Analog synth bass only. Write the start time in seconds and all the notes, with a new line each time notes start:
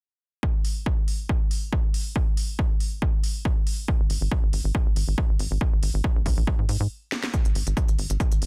4.00 G#1
4.10 G#1
4.21 G#1
4.43 G#1
4.53 G#1
4.64 G#1
4.86 G#1
4.96 G#1
5.08 G#1
5.29 G#1
5.39 G#1
5.51 G#1
5.72 G#1
5.83 G#1
5.94 G#1
6.16 A#1
6.26 A#1
6.37 A#1
6.59 G#2
6.69 G#2
6.80 G#2
7.45 G#1
7.55 G#1
7.67 G#1
7.88 G#1
7.98 G#1
8.10 G#1
8.32 G#1
8.42 G#1